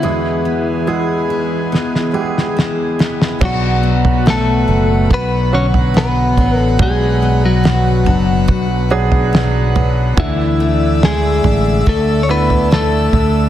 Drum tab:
CC |----------------|x---------------|----------------|----------------|
SD |--------oo-oo-oo|----o-------o---|----o-------o---|----o-------o---|
FT |----------------|o--o----o--o--o-|o-----o-o--o--o-|o-----o-o--o--o-|
BD |----------------|o-------o-------|o-------o-------|o-------o-------|